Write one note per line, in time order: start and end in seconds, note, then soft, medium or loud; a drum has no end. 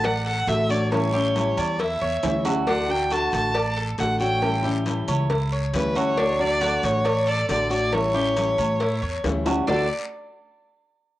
0.00 0.44 A1 medium
0.00 muted nylon-string guitar stroke medium
0.00 low agogo loud
0.00 long guiro medium
0.04 0.25 D5 medium
0.04 0.26 F#5 loud
0.04 cowbell loud
0.26 0.68 A4 medium
0.26 0.50 F#5 loud
0.47 1.51 A1 loud
0.47 0.69 D3 medium
0.47 0.69 A3 medium
0.47 0.69 D4 medium
0.47 0.68 F#4 medium
0.47 0.72 E5 loud
0.47 cowbell medium
0.47 low timbale medium
0.47 low agogo medium
0.47 short guiro medium
0.69 0.91 A3 medium
0.69 0.91 D4 medium
0.69 0.90 F#4 medium
0.69 1.12 C#5 medium
0.69 0.92 D5 loud
0.69 short guiro medium
0.91 1.12 E3 medium
0.91 1.13 G3 medium
0.91 1.13 C#4 medium
0.91 1.12 E4 medium
0.91 1.60 C#5 medium
0.91 cowbell loud
0.91 low agogo loud
0.91 long guiro medium
1.13 1.35 G3 medium
1.13 1.35 C#4 medium
1.13 1.34 E4 medium
1.13 1.56 G4 medium
1.35 1.78 E3 medium
1.35 1.79 G3 medium
1.35 1.79 C#4 medium
1.35 1.79 E4 medium
1.35 cowbell medium
1.35 low timbale medium
1.35 low agogo medium
1.35 short guiro medium
1.57 1.98 E2 medium
1.57 1.79 C#5 medium
1.57 1.81 D5 medium
1.57 low agogo loud
1.57 short guiro medium
1.79 2.01 E4 medium
1.79 2.45 E5 medium
1.79 muted nylon-string guitar stroke medium
1.79 cowbell loud
1.79 low agogo medium
1.79 long guiro medium
2.01 2.22 E2 medium
2.01 2.44 C#5 medium
2.01 low agogo medium
2.23 3.27 D2 medium
2.23 2.44 E3 medium
2.23 2.45 G3 medium
2.23 2.45 C#4 medium
2.23 2.44 E4 medium
2.23 cowbell medium
2.23 high timbale loud
2.23 short guiro medium
2.45 2.67 G3 medium
2.45 2.67 C#4 medium
2.45 2.66 E4 medium
2.45 2.66 F#4 medium
2.45 low timbale loud
2.45 low agogo loud
2.45 short guiro medium
2.67 2.88 D3 medium
2.67 2.88 A3 medium
2.67 3.10 D4 medium
2.67 2.89 D4 medium
2.67 2.88 F#4 medium
2.67 2.92 F#5 loud
2.67 cowbell loud
2.67 long guiro medium
2.89 3.10 A3 medium
2.89 3.10 D4 medium
2.89 3.10 F#4 medium
2.89 3.14 G5 loud
2.89 low agogo medium
3.11 3.53 D3 medium
3.11 3.54 A3 medium
3.11 3.54 D4 medium
3.11 3.54 F#4 medium
3.11 3.33 A5 loud
3.11 cowbell medium
3.11 low timbale medium
3.11 low agogo medium
3.11 short guiro medium
3.32 3.94 A1 loud
3.32 3.74 A5 loud
3.32 cowbell medium
3.32 short guiro medium
3.54 3.76 D5 medium
3.54 muted nylon-string guitar stroke medium
3.54 cowbell loud
3.54 low agogo loud
3.54 long guiro medium
3.77 4.19 A4 medium
3.98 5.02 A1 medium
3.98 4.19 D3 medium
3.98 4.20 A3 medium
3.98 4.20 D4 medium
3.98 4.19 F#4 medium
3.98 4.19 F#5 medium
3.98 cowbell medium
3.98 low timbale medium
3.98 low agogo medium
3.98 short guiro medium
4.20 4.42 A3 medium
4.20 4.42 D4 medium
4.20 4.41 F#4 medium
4.20 4.63 C#5 medium
4.20 4.61 G5 loud
4.20 short guiro medium
4.42 4.63 E3 medium
4.42 4.63 G3 medium
4.42 4.63 C#4 medium
4.42 4.62 E4 medium
4.42 cowbell medium
4.42 low agogo loud
4.42 long guiro medium
4.63 4.85 G3 medium
4.63 4.85 C#4 medium
4.63 4.85 E4 medium
4.63 5.07 G4 medium
4.85 5.29 E3 medium
4.85 5.29 G3 medium
4.85 5.29 C#4 medium
4.85 5.30 E4 medium
4.85 cowbell medium
4.85 low timbale medium
4.85 low agogo medium
4.85 short guiro medium
5.08 5.70 C#2 medium
5.08 5.29 C#5 medium
5.08 low agogo loud
5.08 short guiro medium
5.30 5.51 E4 medium
5.30 muted nylon-string guitar stroke medium
5.30 cowbell loud
5.30 low agogo medium
5.30 long guiro medium
5.52 5.94 C#5 medium
5.52 low agogo medium
5.73 6.77 D2 medium
5.73 5.95 E3 medium
5.73 5.95 G3 medium
5.73 5.95 C#4 medium
5.73 5.94 E4 medium
5.73 5.98 B4 loud
5.73 cowbell medium
5.73 low timbale medium
5.73 short guiro medium
5.95 6.17 G3 medium
5.95 6.17 C#4 medium
5.95 6.16 E4 medium
5.95 6.17 F#4 medium
5.95 6.42 C#5 loud
5.95 low agogo loud
5.95 short guiro medium
6.17 6.38 D3 medium
6.17 6.39 A3 medium
6.17 6.60 D4 medium
6.17 6.39 D4 medium
6.17 6.38 F#4 medium
6.17 cowbell loud
6.17 long guiro medium
6.39 6.60 A3 medium
6.39 6.61 D4 medium
6.39 6.60 F#4 medium
6.39 6.86 D5 loud
6.39 low agogo medium
6.61 7.04 D3 medium
6.61 7.04 A3 medium
6.61 7.04 D4 medium
6.61 7.04 F#4 medium
6.61 cowbell medium
6.61 low timbale medium
6.61 low agogo loud
6.61 short guiro medium
6.83 7.45 A1 loud
6.83 7.29 C#5 loud
6.83 cowbell medium
6.83 short guiro medium
7.04 7.26 D5 medium
7.04 muted nylon-string guitar stroke medium
7.04 cowbell loud
7.04 low agogo loud
7.04 long guiro medium
7.27 7.69 A4 medium
7.27 7.49 D5 loud
7.48 8.52 A1 medium
7.48 7.70 D3 medium
7.48 7.70 A3 medium
7.48 7.70 D4 medium
7.48 7.69 F#4 medium
7.48 7.70 D5 loud
7.48 cowbell medium
7.48 low timbale medium
7.48 low agogo medium
7.48 short guiro medium
7.70 7.92 A3 medium
7.70 7.92 D4 medium
7.70 7.91 F#4 medium
7.70 8.13 C#5 medium
7.70 7.95 D5 loud
7.70 short guiro medium
7.92 8.13 E3 medium
7.92 8.14 G3 medium
7.92 8.13 C#4 medium
7.92 8.12 E4 medium
7.92 9.24 C#5 loud
7.92 cowbell loud
7.92 low agogo loud
7.92 long guiro medium
8.14 8.36 G3 medium
8.14 8.36 C#4 medium
8.14 8.35 E4 medium
8.14 8.57 G4 medium
8.36 8.79 E3 medium
8.36 8.80 G3 medium
8.36 8.80 C#4 medium
8.36 8.80 E4 medium
8.36 cowbell medium
8.36 low timbale medium
8.36 low agogo medium
8.36 short guiro medium
8.58 8.99 A2 medium
8.58 8.80 C#5 medium
8.58 low agogo loud
8.58 short guiro medium
8.80 9.01 E4 medium
8.80 muted nylon-string guitar stroke medium
8.80 cowbell loud
8.80 low agogo medium
8.80 long guiro medium
9.02 9.22 E2 medium
9.02 9.45 C#5 medium
9.02 low agogo medium
9.24 9.63 D2 loud
9.24 9.45 E3 medium
9.24 9.45 G3 soft
9.24 9.46 C#4 medium
9.24 9.44 E4 medium
9.24 cowbell medium
9.24 high bongo medium
9.24 low timbale medium
9.24 short guiro medium
9.45 9.68 G3 medium
9.45 9.67 C#4 medium
9.45 9.67 E4 medium
9.45 9.67 F#4 medium
9.45 low bongo medium
9.45 high timbale loud
9.45 low agogo loud
9.45 short guiro medium
9.67 9.88 D2 medium
9.67 9.85 D3 medium
9.67 9.86 A3 medium
9.67 9.88 D4 medium
9.67 9.86 D4 medium
9.67 9.86 F#4 medium
9.67 9.88 A4 medium
9.67 9.88 D5 loud
9.67 9.88 D5 medium
9.67 low bongo loud
9.67 low timbale loud
9.67 long guiro loud